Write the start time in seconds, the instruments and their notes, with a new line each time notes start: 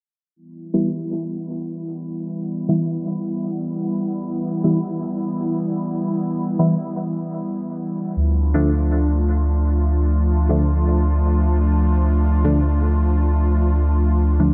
0.36 analog synth pad E3 G3 B3 E4
0.74 synth stab E3 G3 B3 E4
2.69 synth stab E3 G3 B3 E4
4.64 synth stab E3 G3 B3 E4
6.59 synth stab E3 G3 B3 E4
8.17 sub bass D2, analog synth pad F3 A3 D4 F4
8.54 synth stab D3 F3 A3 D4
10.49 synth stab D3 F3 A3 D4
12.45 synth stab D3 F3 A3 D4
14.40 synth stab D3 F3 A3 D4